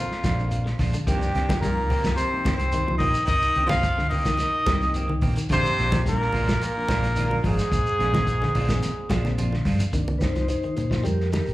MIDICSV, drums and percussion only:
0, 0, Header, 1, 3, 480
1, 0, Start_track
1, 0, Key_signature, -3, "minor"
1, 0, Tempo, 554017
1, 929, Time_signature, 4, 2, 24, 8
1, 9997, End_track
2, 0, Start_track
2, 0, Title_t, "Shekere"
2, 208, Note_on_c, 9, 82, 95
2, 295, Note_off_c, 9, 82, 0
2, 336, Note_on_c, 9, 82, 31
2, 423, Note_off_c, 9, 82, 0
2, 443, Note_on_c, 9, 82, 102
2, 530, Note_off_c, 9, 82, 0
2, 686, Note_on_c, 9, 82, 30
2, 773, Note_off_c, 9, 82, 0
2, 813, Note_on_c, 9, 82, 73
2, 900, Note_off_c, 9, 82, 0
2, 932, Note_on_c, 9, 82, 77
2, 1018, Note_off_c, 9, 82, 0
2, 1057, Note_on_c, 9, 82, 89
2, 1143, Note_off_c, 9, 82, 0
2, 1306, Note_on_c, 9, 82, 31
2, 1392, Note_off_c, 9, 82, 0
2, 1419, Note_on_c, 9, 82, 85
2, 1506, Note_off_c, 9, 82, 0
2, 1658, Note_on_c, 9, 82, 28
2, 1744, Note_off_c, 9, 82, 0
2, 1770, Note_on_c, 9, 82, 60
2, 1857, Note_off_c, 9, 82, 0
2, 1885, Note_on_c, 9, 82, 78
2, 1972, Note_off_c, 9, 82, 0
2, 2125, Note_on_c, 9, 82, 89
2, 2212, Note_off_c, 9, 82, 0
2, 2249, Note_on_c, 9, 82, 28
2, 2336, Note_off_c, 9, 82, 0
2, 2359, Note_on_c, 9, 82, 100
2, 2446, Note_off_c, 9, 82, 0
2, 2600, Note_on_c, 9, 82, 28
2, 2687, Note_off_c, 9, 82, 0
2, 2726, Note_on_c, 9, 82, 68
2, 2812, Note_off_c, 9, 82, 0
2, 2838, Note_on_c, 9, 82, 70
2, 2925, Note_off_c, 9, 82, 0
2, 2964, Note_on_c, 9, 82, 98
2, 3051, Note_off_c, 9, 82, 0
2, 3203, Note_on_c, 9, 82, 30
2, 3289, Note_off_c, 9, 82, 0
2, 3323, Note_on_c, 9, 82, 94
2, 3409, Note_off_c, 9, 82, 0
2, 3569, Note_on_c, 9, 82, 28
2, 3655, Note_off_c, 9, 82, 0
2, 3687, Note_on_c, 9, 82, 61
2, 3774, Note_off_c, 9, 82, 0
2, 3807, Note_on_c, 9, 82, 78
2, 3894, Note_off_c, 9, 82, 0
2, 4045, Note_on_c, 9, 82, 87
2, 4131, Note_off_c, 9, 82, 0
2, 4174, Note_on_c, 9, 82, 31
2, 4260, Note_off_c, 9, 82, 0
2, 4289, Note_on_c, 9, 82, 104
2, 4375, Note_off_c, 9, 82, 0
2, 4530, Note_on_c, 9, 82, 29
2, 4617, Note_off_c, 9, 82, 0
2, 4662, Note_on_c, 9, 82, 77
2, 4748, Note_off_c, 9, 82, 0
2, 4782, Note_on_c, 9, 82, 83
2, 4868, Note_off_c, 9, 82, 0
2, 4903, Note_on_c, 9, 82, 94
2, 4989, Note_off_c, 9, 82, 0
2, 5150, Note_on_c, 9, 82, 32
2, 5236, Note_off_c, 9, 82, 0
2, 5261, Note_on_c, 9, 82, 88
2, 5348, Note_off_c, 9, 82, 0
2, 5506, Note_on_c, 9, 82, 29
2, 5592, Note_off_c, 9, 82, 0
2, 5621, Note_on_c, 9, 82, 66
2, 5708, Note_off_c, 9, 82, 0
2, 5741, Note_on_c, 9, 82, 73
2, 5828, Note_off_c, 9, 82, 0
2, 5975, Note_on_c, 9, 82, 88
2, 6061, Note_off_c, 9, 82, 0
2, 6098, Note_on_c, 9, 82, 32
2, 6184, Note_off_c, 9, 82, 0
2, 6202, Note_on_c, 9, 82, 98
2, 6289, Note_off_c, 9, 82, 0
2, 6451, Note_on_c, 9, 82, 32
2, 6537, Note_off_c, 9, 82, 0
2, 6572, Note_on_c, 9, 82, 75
2, 6659, Note_off_c, 9, 82, 0
2, 6696, Note_on_c, 9, 82, 72
2, 6783, Note_off_c, 9, 82, 0
2, 6814, Note_on_c, 9, 82, 94
2, 6901, Note_off_c, 9, 82, 0
2, 7053, Note_on_c, 9, 82, 32
2, 7140, Note_off_c, 9, 82, 0
2, 7174, Note_on_c, 9, 82, 75
2, 7261, Note_off_c, 9, 82, 0
2, 7414, Note_on_c, 9, 82, 28
2, 7500, Note_off_c, 9, 82, 0
2, 7535, Note_on_c, 9, 82, 70
2, 7622, Note_off_c, 9, 82, 0
2, 7649, Note_on_c, 9, 82, 79
2, 7736, Note_off_c, 9, 82, 0
2, 7895, Note_on_c, 9, 82, 90
2, 7982, Note_off_c, 9, 82, 0
2, 8018, Note_on_c, 9, 82, 31
2, 8105, Note_off_c, 9, 82, 0
2, 8131, Note_on_c, 9, 82, 102
2, 8218, Note_off_c, 9, 82, 0
2, 8366, Note_on_c, 9, 82, 30
2, 8453, Note_off_c, 9, 82, 0
2, 8490, Note_on_c, 9, 82, 79
2, 8576, Note_off_c, 9, 82, 0
2, 8603, Note_on_c, 9, 82, 66
2, 8689, Note_off_c, 9, 82, 0
2, 8845, Note_on_c, 9, 82, 90
2, 8932, Note_off_c, 9, 82, 0
2, 8971, Note_on_c, 9, 82, 30
2, 9058, Note_off_c, 9, 82, 0
2, 9093, Note_on_c, 9, 82, 84
2, 9180, Note_off_c, 9, 82, 0
2, 9340, Note_on_c, 9, 82, 25
2, 9427, Note_off_c, 9, 82, 0
2, 9580, Note_on_c, 9, 82, 72
2, 9666, Note_off_c, 9, 82, 0
2, 9809, Note_on_c, 9, 82, 80
2, 9895, Note_off_c, 9, 82, 0
2, 9932, Note_on_c, 9, 82, 29
2, 9997, Note_off_c, 9, 82, 0
2, 9997, End_track
3, 0, Start_track
3, 0, Title_t, "Drums"
3, 99, Note_on_c, 9, 38, 29
3, 186, Note_off_c, 9, 38, 0
3, 207, Note_on_c, 9, 36, 64
3, 207, Note_on_c, 9, 42, 55
3, 213, Note_on_c, 9, 38, 67
3, 293, Note_off_c, 9, 42, 0
3, 294, Note_off_c, 9, 36, 0
3, 300, Note_off_c, 9, 38, 0
3, 445, Note_on_c, 9, 42, 64
3, 531, Note_off_c, 9, 42, 0
3, 571, Note_on_c, 9, 38, 31
3, 658, Note_off_c, 9, 38, 0
3, 684, Note_on_c, 9, 46, 72
3, 687, Note_on_c, 9, 36, 69
3, 690, Note_on_c, 9, 38, 34
3, 770, Note_off_c, 9, 46, 0
3, 774, Note_off_c, 9, 36, 0
3, 776, Note_off_c, 9, 38, 0
3, 809, Note_on_c, 9, 42, 62
3, 896, Note_off_c, 9, 42, 0
3, 929, Note_on_c, 9, 36, 92
3, 931, Note_on_c, 9, 42, 65
3, 1016, Note_off_c, 9, 36, 0
3, 1018, Note_off_c, 9, 42, 0
3, 1169, Note_on_c, 9, 42, 49
3, 1175, Note_on_c, 9, 38, 26
3, 1256, Note_off_c, 9, 42, 0
3, 1262, Note_off_c, 9, 38, 0
3, 1292, Note_on_c, 9, 42, 58
3, 1293, Note_on_c, 9, 36, 73
3, 1297, Note_on_c, 9, 63, 102
3, 1298, Note_on_c, 9, 38, 70
3, 1379, Note_off_c, 9, 36, 0
3, 1379, Note_off_c, 9, 42, 0
3, 1384, Note_off_c, 9, 63, 0
3, 1385, Note_off_c, 9, 38, 0
3, 1408, Note_on_c, 9, 36, 70
3, 1409, Note_on_c, 9, 42, 77
3, 1495, Note_off_c, 9, 36, 0
3, 1496, Note_off_c, 9, 42, 0
3, 1646, Note_on_c, 9, 63, 74
3, 1646, Note_on_c, 9, 64, 81
3, 1649, Note_on_c, 9, 46, 74
3, 1732, Note_off_c, 9, 63, 0
3, 1732, Note_off_c, 9, 64, 0
3, 1735, Note_off_c, 9, 46, 0
3, 1771, Note_on_c, 9, 36, 66
3, 1772, Note_on_c, 9, 42, 49
3, 1778, Note_on_c, 9, 38, 73
3, 1858, Note_off_c, 9, 36, 0
3, 1858, Note_off_c, 9, 42, 0
3, 1864, Note_off_c, 9, 38, 0
3, 1884, Note_on_c, 9, 42, 59
3, 1971, Note_off_c, 9, 42, 0
3, 2125, Note_on_c, 9, 36, 72
3, 2126, Note_on_c, 9, 42, 54
3, 2131, Note_on_c, 9, 63, 98
3, 2132, Note_on_c, 9, 38, 77
3, 2211, Note_off_c, 9, 36, 0
3, 2213, Note_off_c, 9, 42, 0
3, 2217, Note_off_c, 9, 63, 0
3, 2219, Note_off_c, 9, 38, 0
3, 2247, Note_on_c, 9, 42, 52
3, 2253, Note_on_c, 9, 38, 23
3, 2333, Note_off_c, 9, 42, 0
3, 2340, Note_off_c, 9, 38, 0
3, 2359, Note_on_c, 9, 42, 67
3, 2445, Note_off_c, 9, 42, 0
3, 2498, Note_on_c, 9, 63, 91
3, 2584, Note_off_c, 9, 63, 0
3, 2598, Note_on_c, 9, 46, 66
3, 2602, Note_on_c, 9, 36, 72
3, 2604, Note_on_c, 9, 64, 83
3, 2685, Note_off_c, 9, 46, 0
3, 2689, Note_off_c, 9, 36, 0
3, 2691, Note_off_c, 9, 64, 0
3, 2719, Note_on_c, 9, 42, 54
3, 2805, Note_off_c, 9, 42, 0
3, 2834, Note_on_c, 9, 42, 68
3, 2841, Note_on_c, 9, 36, 94
3, 2842, Note_on_c, 9, 64, 80
3, 2921, Note_off_c, 9, 42, 0
3, 2927, Note_off_c, 9, 36, 0
3, 2929, Note_off_c, 9, 64, 0
3, 3076, Note_on_c, 9, 42, 49
3, 3163, Note_off_c, 9, 42, 0
3, 3199, Note_on_c, 9, 63, 105
3, 3202, Note_on_c, 9, 42, 52
3, 3206, Note_on_c, 9, 36, 69
3, 3208, Note_on_c, 9, 38, 78
3, 3286, Note_off_c, 9, 63, 0
3, 3289, Note_off_c, 9, 42, 0
3, 3292, Note_off_c, 9, 36, 0
3, 3295, Note_off_c, 9, 38, 0
3, 3316, Note_on_c, 9, 42, 66
3, 3322, Note_on_c, 9, 36, 80
3, 3322, Note_on_c, 9, 38, 34
3, 3402, Note_off_c, 9, 42, 0
3, 3408, Note_off_c, 9, 38, 0
3, 3409, Note_off_c, 9, 36, 0
3, 3451, Note_on_c, 9, 38, 28
3, 3538, Note_off_c, 9, 38, 0
3, 3560, Note_on_c, 9, 63, 83
3, 3560, Note_on_c, 9, 64, 80
3, 3562, Note_on_c, 9, 46, 73
3, 3646, Note_off_c, 9, 63, 0
3, 3646, Note_off_c, 9, 64, 0
3, 3648, Note_off_c, 9, 46, 0
3, 3680, Note_on_c, 9, 42, 44
3, 3686, Note_on_c, 9, 38, 65
3, 3687, Note_on_c, 9, 36, 60
3, 3766, Note_off_c, 9, 42, 0
3, 3772, Note_off_c, 9, 38, 0
3, 3774, Note_off_c, 9, 36, 0
3, 3789, Note_on_c, 9, 63, 78
3, 3797, Note_on_c, 9, 42, 58
3, 3803, Note_on_c, 9, 38, 27
3, 3876, Note_off_c, 9, 63, 0
3, 3883, Note_off_c, 9, 42, 0
3, 3889, Note_off_c, 9, 38, 0
3, 4041, Note_on_c, 9, 63, 97
3, 4041, Note_on_c, 9, 64, 70
3, 4042, Note_on_c, 9, 42, 50
3, 4043, Note_on_c, 9, 36, 69
3, 4048, Note_on_c, 9, 38, 76
3, 4127, Note_off_c, 9, 63, 0
3, 4127, Note_off_c, 9, 64, 0
3, 4128, Note_off_c, 9, 42, 0
3, 4130, Note_off_c, 9, 36, 0
3, 4134, Note_off_c, 9, 38, 0
3, 4177, Note_on_c, 9, 38, 24
3, 4264, Note_off_c, 9, 38, 0
3, 4280, Note_on_c, 9, 42, 64
3, 4366, Note_off_c, 9, 42, 0
3, 4412, Note_on_c, 9, 63, 88
3, 4499, Note_off_c, 9, 63, 0
3, 4516, Note_on_c, 9, 46, 64
3, 4524, Note_on_c, 9, 36, 72
3, 4530, Note_on_c, 9, 64, 82
3, 4603, Note_off_c, 9, 46, 0
3, 4611, Note_off_c, 9, 36, 0
3, 4617, Note_off_c, 9, 64, 0
3, 4643, Note_on_c, 9, 42, 62
3, 4730, Note_off_c, 9, 42, 0
3, 4757, Note_on_c, 9, 42, 76
3, 4765, Note_on_c, 9, 36, 90
3, 4843, Note_off_c, 9, 42, 0
3, 4851, Note_off_c, 9, 36, 0
3, 5010, Note_on_c, 9, 42, 57
3, 5016, Note_on_c, 9, 38, 26
3, 5097, Note_off_c, 9, 42, 0
3, 5103, Note_off_c, 9, 38, 0
3, 5125, Note_on_c, 9, 42, 54
3, 5130, Note_on_c, 9, 63, 100
3, 5131, Note_on_c, 9, 36, 67
3, 5131, Note_on_c, 9, 38, 68
3, 5212, Note_off_c, 9, 42, 0
3, 5217, Note_off_c, 9, 36, 0
3, 5217, Note_off_c, 9, 63, 0
3, 5218, Note_off_c, 9, 38, 0
3, 5249, Note_on_c, 9, 36, 76
3, 5250, Note_on_c, 9, 42, 78
3, 5257, Note_on_c, 9, 38, 29
3, 5335, Note_off_c, 9, 36, 0
3, 5337, Note_off_c, 9, 42, 0
3, 5343, Note_off_c, 9, 38, 0
3, 5384, Note_on_c, 9, 38, 25
3, 5471, Note_off_c, 9, 38, 0
3, 5480, Note_on_c, 9, 63, 81
3, 5480, Note_on_c, 9, 64, 90
3, 5492, Note_on_c, 9, 46, 75
3, 5567, Note_off_c, 9, 63, 0
3, 5567, Note_off_c, 9, 64, 0
3, 5579, Note_off_c, 9, 46, 0
3, 5613, Note_on_c, 9, 36, 62
3, 5616, Note_on_c, 9, 42, 53
3, 5622, Note_on_c, 9, 38, 71
3, 5699, Note_off_c, 9, 36, 0
3, 5702, Note_off_c, 9, 42, 0
3, 5708, Note_off_c, 9, 38, 0
3, 5730, Note_on_c, 9, 42, 71
3, 5817, Note_off_c, 9, 42, 0
3, 5965, Note_on_c, 9, 63, 101
3, 5965, Note_on_c, 9, 64, 74
3, 5969, Note_on_c, 9, 36, 75
3, 5970, Note_on_c, 9, 42, 54
3, 5976, Note_on_c, 9, 38, 72
3, 6052, Note_off_c, 9, 63, 0
3, 6052, Note_off_c, 9, 64, 0
3, 6055, Note_off_c, 9, 36, 0
3, 6056, Note_off_c, 9, 42, 0
3, 6062, Note_off_c, 9, 38, 0
3, 6096, Note_on_c, 9, 42, 52
3, 6102, Note_on_c, 9, 38, 28
3, 6182, Note_off_c, 9, 42, 0
3, 6188, Note_off_c, 9, 38, 0
3, 6207, Note_on_c, 9, 42, 80
3, 6294, Note_off_c, 9, 42, 0
3, 6334, Note_on_c, 9, 63, 88
3, 6420, Note_off_c, 9, 63, 0
3, 6446, Note_on_c, 9, 64, 81
3, 6447, Note_on_c, 9, 36, 64
3, 6448, Note_on_c, 9, 46, 63
3, 6532, Note_off_c, 9, 64, 0
3, 6534, Note_off_c, 9, 36, 0
3, 6534, Note_off_c, 9, 46, 0
3, 6574, Note_on_c, 9, 42, 58
3, 6580, Note_on_c, 9, 38, 30
3, 6660, Note_off_c, 9, 42, 0
3, 6667, Note_off_c, 9, 38, 0
3, 6686, Note_on_c, 9, 36, 95
3, 6689, Note_on_c, 9, 42, 68
3, 6772, Note_off_c, 9, 36, 0
3, 6776, Note_off_c, 9, 42, 0
3, 6932, Note_on_c, 9, 42, 52
3, 6938, Note_on_c, 9, 38, 26
3, 7019, Note_off_c, 9, 42, 0
3, 7025, Note_off_c, 9, 38, 0
3, 7050, Note_on_c, 9, 36, 72
3, 7052, Note_on_c, 9, 42, 52
3, 7056, Note_on_c, 9, 63, 88
3, 7058, Note_on_c, 9, 38, 77
3, 7137, Note_off_c, 9, 36, 0
3, 7139, Note_off_c, 9, 42, 0
3, 7143, Note_off_c, 9, 63, 0
3, 7145, Note_off_c, 9, 38, 0
3, 7164, Note_on_c, 9, 36, 68
3, 7165, Note_on_c, 9, 42, 65
3, 7250, Note_off_c, 9, 36, 0
3, 7252, Note_off_c, 9, 42, 0
3, 7292, Note_on_c, 9, 63, 80
3, 7296, Note_on_c, 9, 38, 27
3, 7379, Note_off_c, 9, 63, 0
3, 7383, Note_off_c, 9, 38, 0
3, 7404, Note_on_c, 9, 46, 70
3, 7409, Note_on_c, 9, 63, 82
3, 7409, Note_on_c, 9, 64, 85
3, 7491, Note_off_c, 9, 46, 0
3, 7496, Note_off_c, 9, 63, 0
3, 7496, Note_off_c, 9, 64, 0
3, 7525, Note_on_c, 9, 42, 52
3, 7528, Note_on_c, 9, 36, 65
3, 7531, Note_on_c, 9, 38, 70
3, 7612, Note_off_c, 9, 42, 0
3, 7615, Note_off_c, 9, 36, 0
3, 7618, Note_off_c, 9, 38, 0
3, 7645, Note_on_c, 9, 42, 67
3, 7647, Note_on_c, 9, 63, 71
3, 7651, Note_on_c, 9, 38, 25
3, 7732, Note_off_c, 9, 42, 0
3, 7734, Note_off_c, 9, 63, 0
3, 7738, Note_off_c, 9, 38, 0
3, 7879, Note_on_c, 9, 42, 59
3, 7882, Note_on_c, 9, 36, 64
3, 7885, Note_on_c, 9, 38, 80
3, 7890, Note_on_c, 9, 63, 107
3, 7890, Note_on_c, 9, 64, 73
3, 7966, Note_off_c, 9, 42, 0
3, 7968, Note_off_c, 9, 36, 0
3, 7972, Note_off_c, 9, 38, 0
3, 7976, Note_off_c, 9, 63, 0
3, 7976, Note_off_c, 9, 64, 0
3, 8013, Note_on_c, 9, 63, 115
3, 8016, Note_on_c, 9, 38, 23
3, 8099, Note_off_c, 9, 63, 0
3, 8102, Note_off_c, 9, 38, 0
3, 8128, Note_on_c, 9, 42, 70
3, 8133, Note_on_c, 9, 63, 85
3, 8215, Note_off_c, 9, 42, 0
3, 8220, Note_off_c, 9, 63, 0
3, 8252, Note_on_c, 9, 63, 74
3, 8261, Note_on_c, 9, 38, 29
3, 8339, Note_off_c, 9, 63, 0
3, 8348, Note_off_c, 9, 38, 0
3, 8362, Note_on_c, 9, 46, 63
3, 8364, Note_on_c, 9, 36, 63
3, 8368, Note_on_c, 9, 38, 31
3, 8448, Note_off_c, 9, 46, 0
3, 8450, Note_off_c, 9, 36, 0
3, 8454, Note_off_c, 9, 38, 0
3, 8485, Note_on_c, 9, 42, 62
3, 8491, Note_on_c, 9, 64, 84
3, 8572, Note_off_c, 9, 42, 0
3, 8577, Note_off_c, 9, 64, 0
3, 8604, Note_on_c, 9, 36, 76
3, 8604, Note_on_c, 9, 42, 67
3, 8691, Note_off_c, 9, 36, 0
3, 8691, Note_off_c, 9, 42, 0
3, 8731, Note_on_c, 9, 42, 27
3, 8732, Note_on_c, 9, 63, 86
3, 8818, Note_off_c, 9, 42, 0
3, 8818, Note_off_c, 9, 63, 0
3, 8846, Note_on_c, 9, 36, 60
3, 8847, Note_on_c, 9, 42, 46
3, 8853, Note_on_c, 9, 38, 66
3, 8932, Note_off_c, 9, 36, 0
3, 8934, Note_off_c, 9, 42, 0
3, 8940, Note_off_c, 9, 38, 0
3, 8972, Note_on_c, 9, 42, 33
3, 8977, Note_on_c, 9, 63, 67
3, 8978, Note_on_c, 9, 38, 26
3, 9059, Note_off_c, 9, 42, 0
3, 9063, Note_off_c, 9, 63, 0
3, 9065, Note_off_c, 9, 38, 0
3, 9081, Note_on_c, 9, 42, 68
3, 9168, Note_off_c, 9, 42, 0
3, 9211, Note_on_c, 9, 42, 31
3, 9297, Note_off_c, 9, 42, 0
3, 9327, Note_on_c, 9, 42, 55
3, 9335, Note_on_c, 9, 63, 69
3, 9335, Note_on_c, 9, 64, 80
3, 9413, Note_off_c, 9, 42, 0
3, 9422, Note_off_c, 9, 63, 0
3, 9422, Note_off_c, 9, 64, 0
3, 9451, Note_on_c, 9, 36, 58
3, 9453, Note_on_c, 9, 38, 64
3, 9538, Note_off_c, 9, 36, 0
3, 9540, Note_off_c, 9, 38, 0
3, 9571, Note_on_c, 9, 42, 55
3, 9574, Note_on_c, 9, 63, 73
3, 9657, Note_off_c, 9, 42, 0
3, 9660, Note_off_c, 9, 63, 0
3, 9707, Note_on_c, 9, 38, 23
3, 9793, Note_off_c, 9, 38, 0
3, 9815, Note_on_c, 9, 42, 46
3, 9820, Note_on_c, 9, 63, 91
3, 9821, Note_on_c, 9, 38, 66
3, 9901, Note_off_c, 9, 42, 0
3, 9907, Note_off_c, 9, 38, 0
3, 9907, Note_off_c, 9, 63, 0
3, 9948, Note_on_c, 9, 42, 28
3, 9997, Note_off_c, 9, 42, 0
3, 9997, End_track
0, 0, End_of_file